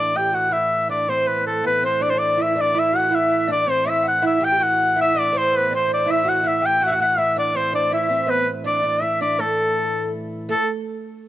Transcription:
0.00 1.62 A2 medium
0.00 1.62 E3 medium
0.00 0.15 D4 medium
0.00 0.18 D5 medium
0.16 0.33 G4 medium
0.16 0.36 G5 medium
0.33 0.51 F#4 medium
0.33 0.54 F#5 medium
0.51 0.89 E4 medium
0.51 0.90 E5 loud
0.89 1.08 D4 medium
0.89 1.11 D5 medium
1.09 1.28 C4 medium
1.09 1.29 C5 medium
1.27 1.46 B3 medium
1.27 1.46 B4 medium
1.46 1.63 A3 soft
1.46 1.64 A4 medium
1.64 6.06 A2 medium
1.64 6.06 E3 medium
1.64 1.83 B3 medium
1.64 1.85 B4 medium
1.64 1.83 B4 medium
1.82 2.00 C4 medium
1.82 2.04 C5 medium
2.00 2.13 D4 medium
2.00 2.11 D5 medium
2.00 2.16 D5 medium
2.10 2.20 C5 medium
2.14 2.37 D4 medium
2.14 2.41 D5 medium
2.19 2.43 D5 medium
2.37 2.55 E4 medium
2.37 2.56 E5 medium
2.42 2.62 E5 medium
2.56 2.74 D4 medium
2.56 2.74 D5 medium
2.61 2.80 D5 loud
2.74 2.92 E4 medium
2.74 2.95 E5 medium
2.79 2.98 E5 loud
2.93 3.11 F#4 medium
2.93 3.04 F#5 medium
2.93 3.16 F#5 loud
3.05 3.14 F#5 medium
3.11 3.46 E4 medium
3.11 3.49 E5 medium
3.11 3.50 E5 loud
3.48 3.66 D4 medium
3.48 3.61 D5 medium
3.52 3.72 D5 loud
3.61 3.68 D5 medium
3.66 3.85 C4 medium
3.66 3.85 C5 medium
3.70 3.91 C5 loud
3.85 4.20 E4 medium
3.85 4.05 E5 loud
3.85 4.06 E5 loud
4.03 4.24 F#5 loud
4.08 4.23 F#5 loud
4.22 4.40 E4 loud
4.22 4.41 E5 medium
4.26 4.46 E5 loud
4.40 4.51 G4 medium
4.40 4.58 G5 medium
4.45 4.64 G5 loud
4.52 4.59 G4 medium
4.59 4.94 F#4 medium
4.59 4.95 F#5 loud
4.59 4.98 F#5 medium
4.96 5.14 E4 medium
4.96 5.31 E5 loud
5.01 5.20 E5 loud
5.14 5.32 D4 medium
5.19 5.39 D5 loud
5.33 5.52 C4 medium
5.33 5.68 C5 medium
5.37 5.58 C5 medium
5.52 5.71 B3 medium
5.56 5.73 B4 loud
5.70 5.87 C4 medium
5.70 5.76 D5 medium
5.75 6.04 C5 medium
5.75 5.90 C5 medium
5.88 6.05 D4 medium
5.94 6.12 D5 medium
6.06 10.54 A2 medium
6.06 10.54 E3 medium
6.06 6.24 E4 medium
6.06 6.24 E5 medium
6.11 6.30 E5 loud
6.24 6.43 F#4 medium
6.24 6.43 F#5 medium
6.29 6.49 F#5 loud
6.43 6.62 E4 medium
6.43 6.63 E5 medium
6.43 6.67 E5 medium
6.62 6.80 G4 medium
6.62 6.82 G5 medium
6.62 6.85 G5 loud
6.80 6.89 F#4 medium
6.80 6.88 F#5 medium
6.87 6.99 F#4 medium
6.87 6.93 E5 medium
6.87 6.97 F#5 medium
6.92 7.00 F#5 loud
6.98 7.18 F#4 medium
6.98 7.04 F#5 loud
6.98 7.20 F#5 loud
7.03 7.08 E5 medium
7.03 7.18 F#5 medium
7.17 7.35 E4 medium
7.17 7.36 E5 medium
7.17 7.37 E5 loud
7.36 7.55 D4 medium
7.36 7.53 D5 medium
7.36 7.58 D5 medium
7.54 7.73 C4 medium
7.54 7.72 C5 medium
7.54 7.74 C5 medium
7.73 7.90 D4 medium
7.73 7.93 D5 medium
7.73 7.91 D5 medium
7.91 8.09 E4 medium
7.91 8.30 E5 medium
7.91 8.31 E5 medium
8.10 8.29 C4 medium
8.27 8.45 B3 medium
8.27 8.47 B4 medium
8.27 8.48 B4 loud
8.64 8.82 D4 medium
8.64 9.03 D5 medium
8.64 9.03 D5 loud
8.83 9.02 D4 medium
9.01 9.20 E4 medium
9.01 9.40 E5 medium
9.01 9.21 E5 medium
9.21 9.40 D4 medium
9.21 9.42 D5 medium
9.39 10.09 A3 medium
9.39 10.13 A4 medium
9.39 10.14 A4 medium
10.49 10.67 A3 medium
10.49 10.67 A4 loud
10.49 10.68 A4 medium

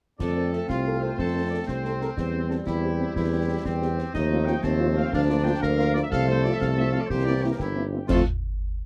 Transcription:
0.19 0.60 F2 medium
0.19 2.13 A3 soft
0.19 2.13 C4 soft
0.19 0.65 A4 medium
0.19 0.50 D5 medium
0.19 concert bass drum medium
0.19 snare medium
0.19 crash soft
0.35 0.42 C4 soft
0.35 0.42 A4 soft
0.53 0.59 C4 soft
0.53 0.58 A4 soft
0.53 0.69 E5 medium
0.53 snare soft
0.68 1.10 C2 medium
0.68 1.15 F4 medium
0.68 0.99 F5 medium
0.68 concert bass drum medium
0.68 snare medium
0.86 0.92 C4 soft
0.86 0.92 A4 soft
1.01 1.08 C4 soft
1.01 1.08 A4 soft
1.01 1.16 C5 medium
1.17 1.59 F2 medium
1.17 1.64 A4 medium
1.17 1.48 C5 medium
1.17 concert bass drum medium
1.17 snare medium
1.35 1.41 C4 soft
1.35 1.41 A4 soft
1.51 1.57 C4 soft
1.51 1.57 A4 soft
1.51 1.58 D5 medium
1.67 2.08 C2 soft
1.67 2.62 C4 medium
1.67 1.99 C5 medium
1.67 concert bass drum medium
1.67 snare medium
1.84 1.90 C4 soft
1.84 1.90 A4 soft
1.84 snare soft
2.01 2.07 C4 soft
2.01 2.07 A4 soft
2.01 2.09 A#4 medium
2.01 snare soft
2.17 2.58 E2 medium
2.17 4.10 G3 medium
2.17 4.10 C4 medium
2.17 2.48 C5 medium
2.17 concert bass drum medium
2.17 snare medium
2.33 2.39 C4 soft
2.33 2.39 G4 soft
2.49 2.55 C4 soft
2.49 2.55 G4 soft
2.49 2.58 A4 medium
2.49 snare soft
2.67 3.07 E2 medium
2.67 3.12 E4 medium
2.67 4.10 G4 medium
2.67 concert bass drum medium
2.67 snare medium
2.82 2.88 C4 soft
2.82 2.89 G4 soft
2.99 3.05 C4 soft
2.99 3.05 G4 soft
3.15 3.56 E2 medium
3.15 3.61 E4 medium
3.15 concert bass drum medium
3.15 snare medium
3.32 3.38 C4 soft
3.32 3.38 G4 soft
3.48 3.54 C4 soft
3.48 3.54 G4 soft
3.65 4.06 E2 medium
3.65 4.14 C4 medium
3.65 concert bass drum medium
3.65 snare medium
3.81 3.87 C4 medium
3.81 3.87 G4 medium
3.81 snare soft
3.98 4.04 C4 medium
3.98 4.04 G4 soft
3.98 snare soft
4.14 4.55 D#2 medium
4.14 6.07 F3 medium
4.14 5.09 A3 medium
4.14 4.60 D#4 medium
4.14 4.44 D#5 medium
4.14 concert bass drum medium
4.14 snare medium
4.14 crash soft
4.30 4.36 A3 medium
4.30 4.36 C4 medium
4.30 4.36 F4 medium
4.46 4.52 A3 medium
4.46 4.52 C4 medium
4.46 4.52 F4 soft
4.46 4.63 G5 medium
4.46 snare medium
4.63 5.04 D#2 medium
4.63 5.09 C4 medium
4.63 4.97 A5 medium
4.63 concert bass drum medium
4.63 snare medium
4.79 4.85 A3 medium
4.79 4.85 C4 medium
4.79 4.85 F4 medium
4.95 5.02 A3 medium
4.95 5.01 C4 medium
4.95 5.01 F4 medium
4.95 5.12 F5 medium
5.12 5.54 D2 medium
5.12 6.11 A#3 medium
5.12 5.59 D4 medium
5.12 5.21 F5 medium
5.12 concert bass drum medium
5.12 snare medium
5.27 5.34 A#3 medium
5.27 5.34 F4 medium
5.27 5.45 D5 medium
5.44 5.51 A#3 medium
5.44 5.50 F4 medium
5.44 5.62 G5 medium
5.61 6.03 D2 medium
5.61 5.98 A#4 medium
5.61 5.76 F5 medium
5.61 concert bass drum medium
5.61 snare medium
5.77 5.84 A#3 medium
5.77 5.84 F4 medium
5.77 5.93 F5 medium
5.77 snare soft
5.94 6.00 A#3 medium
5.94 6.00 F4 medium
5.94 6.02 D5 medium
5.94 snare soft
6.03 6.11 E5 medium
6.11 6.52 C2 medium
6.11 7.06 F3 medium
6.11 7.10 A3 medium
6.11 7.06 A4 medium
6.11 6.26 F5 loud
6.11 concert bass drum medium
6.11 snare medium
6.28 6.34 A3 medium
6.28 6.34 C4 medium
6.28 6.34 F4 medium
6.28 6.43 C5 medium
6.44 6.50 A3 medium
6.44 6.50 C4 medium
6.44 6.50 F4 medium
6.44 6.52 D5 medium
6.44 snare medium
6.53 6.56 E5 medium
6.60 6.97 C2 medium
6.60 6.68 F5 loud
6.60 concert bass drum medium
6.60 snare medium
6.77 6.83 A3 medium
6.77 6.83 C4 medium
6.77 6.83 F4 medium
6.77 6.92 E5 medium
6.92 6.99 A3 medium
6.92 6.99 C4 medium
6.92 6.99 F4 medium
6.92 7.00 F5 medium
7.01 7.09 D5 medium
7.08 7.51 C2 medium
7.08 7.92 E3 medium
7.08 7.88 A#3 medium
7.08 7.56 G4 medium
7.08 7.25 C5 medium
7.08 concert bass drum medium
7.08 snare medium
7.25 7.32 A#3 medium
7.25 7.33 C4 medium
7.25 7.32 E4 medium
7.25 7.41 D5 medium
7.42 7.49 A#3 medium
7.42 7.49 C4 medium
7.42 7.49 E4 medium
7.42 7.51 G4 medium
7.51 7.55 A#4 medium
7.58 8.00 G1 medium
7.58 7.84 E4 medium
7.58 8.04 G4 medium
7.58 concert bass drum medium
7.58 snare medium
7.76 7.82 A#3 medium
7.76 7.82 C4 soft
7.76 7.82 E4 medium
7.91 7.98 A#3 medium
7.91 7.98 C4 medium
7.91 7.98 E4 soft
8.07 8.22 F2 medium
8.07 8.21 F3 medium
8.07 8.21 A3 medium
8.07 8.22 A3 medium
8.07 8.23 C4 medium
8.07 8.22 F4 medium
8.07 8.23 F4 medium
8.07 8.23 A4 medium
8.07 concert bass drum medium
8.07 snare medium
8.07 crash medium

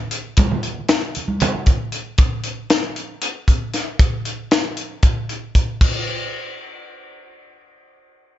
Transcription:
0.11 closed hi-hat medium
0.37 kick loud
0.37 closed hi-hat medium
0.37 high conga medium
0.37 low conga soft
0.51 low conga medium
0.63 closed hi-hat medium
0.89 snare medium
0.89 closed hi-hat medium
0.89 low conga soft
1.15 closed hi-hat medium
1.15 low conga soft
1.28 high conga medium
1.40 closed hi-hat medium
1.40 low conga medium
1.55 low conga soft
1.66 kick medium
1.66 closed hi-hat soft
1.66 low conga soft
1.92 closed hi-hat medium
2.18 kick loud
2.18 closed hi-hat medium
2.44 closed hi-hat medium
2.70 snare medium
2.70 closed hi-hat medium
2.96 closed hi-hat medium
3.22 closed hi-hat medium
3.48 kick medium
3.48 closed hi-hat medium
3.74 snare soft
3.74 closed hi-hat medium
3.99 kick medium
3.99 closed hi-hat medium
4.25 closed hi-hat medium
4.51 snare medium
4.51 closed hi-hat medium
4.77 closed hi-hat medium
5.03 kick medium
5.03 closed hi-hat medium
5.29 closed hi-hat medium
5.55 kick medium
5.55 closed hi-hat soft
5.81 kick medium
5.81 crash medium

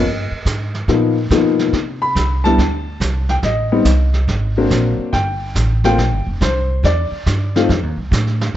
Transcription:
0.00 0.29 G2 medium
0.00 0.69 D#5 medium
0.00 brush sweep medium
0.31 muted upright bass stroke soft
0.45 0.87 G#2 medium
0.45 kick soft
0.45 snare medium
0.45 hi-hat pedal medium
0.74 snare soft
0.88 1.29 A#2 medium
0.88 1.14 F3 medium
0.88 1.14 A#3 soft
0.88 1.14 B3 medium
0.88 1.15 D#4 medium
0.88 brush sweep soft
0.88 kick soft
0.88 snare soft
1.31 1.72 B2 medium
1.31 1.74 F3 medium
1.31 1.74 A#3 medium
1.31 1.74 B3 medium
1.31 1.74 D#4 medium
1.31 kick soft
1.31 snare medium
1.31 hi-hat pedal medium
1.59 snare soft
1.73 2.14 C3 medium
1.73 brush sweep soft
1.73 kick soft
1.73 snare soft
2.02 2.41 B5 loud
2.15 2.57 C2 medium
2.15 kick soft
2.15 snare medium
2.15 hi-hat pedal medium
2.44 2.57 G3 medium
2.44 2.58 B3 medium
2.44 2.58 D4 medium
2.44 2.58 E4 medium
2.44 3.25 A5 medium
2.44 snare soft
2.58 2.99 D2 medium
2.58 brush sweep soft
2.58 kick soft
2.58 snare soft
3.00 3.42 C2 medium
3.00 kick soft
3.00 snare medium
3.00 hi-hat pedal medium
3.29 3.35 G5 medium
3.29 snare soft
3.43 3.84 A1 medium
3.43 4.67 D#5 medium
3.43 brush sweep soft
3.43 kick soft
3.43 snare soft
3.72 3.84 G3 medium
3.72 3.85 B3 medium
3.72 3.85 C4 medium
3.72 3.85 D#4 medium
3.85 4.27 C2 medium
3.85 kick soft
3.85 snare medium
3.85 hi-hat pedal medium
4.14 snare soft
4.28 4.69 G#1 medium
4.28 brush sweep soft
4.28 kick soft
4.28 snare soft
4.57 5.11 F#3 medium
4.57 5.11 A#3 medium
4.57 5.11 C4 medium
4.57 5.11 D4 medium
4.70 4.97 A#1 medium
4.70 kick soft
4.70 snare medium
4.70 hi-hat pedal medium
4.98 muted upright bass stroke soft
5.13 5.54 G1 medium
5.13 5.80 G5 medium
5.13 brush sweep soft
5.13 kick soft
5.13 snare soft
5.55 5.97 A1 medium
5.55 kick soft
5.55 snare medium
5.55 hi-hat pedal medium
5.84 5.97 A3 medium
5.84 5.98 A#3 medium
5.84 5.98 C4 medium
5.84 5.98 F4 medium
5.84 6.24 G5 loud
5.84 snare soft
5.98 6.12 A#1 medium
5.98 brush sweep soft
5.98 kick soft
5.98 snare soft
6.12 6.26 G1 medium
6.27 6.40 F1 medium
6.41 6.82 C2 medium
6.41 6.85 C5 medium
6.41 kick soft
6.41 snare medium
6.41 hi-hat pedal medium
6.83 7.10 E2 medium
6.83 7.66 D5 medium
6.83 brush sweep medium
6.83 kick soft
6.83 snare soft
7.11 muted upright bass stroke soft
7.26 7.68 G2 medium
7.26 kick soft
7.26 snare medium
7.26 hi-hat pedal soft
7.56 7.68 A3 medium
7.56 7.68 C4 medium
7.56 7.68 D#4 medium
7.56 7.68 F4 medium
7.56 snare soft
7.69 7.83 F2 medium
7.69 brush sweep medium
7.69 kick soft
7.69 snare soft
7.83 7.96 D#2 medium
7.97 8.11 C2 medium
8.11 8.53 A2 medium
8.11 kick soft
8.11 snare medium
8.11 hi-hat pedal medium
8.27 snare soft
8.41 snare soft

